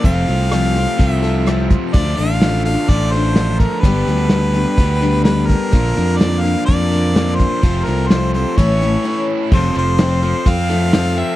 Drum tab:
CC |--------|--------|--------|--------|
HH |xxxxxxxx|xxxxxxxx|xxxxxxxx|xxxxxxxx|
SD |--r---r-|--o---o-|--o---o-|--o---o-|
BD |o---o--o|o---o--o|o---o--o|o---o--o|

CC |--------|x-------|
HH |xxxxxx--|-xxxxxxx|
SD |--o-----|--o---o-|
BD |o---o---|o---o---|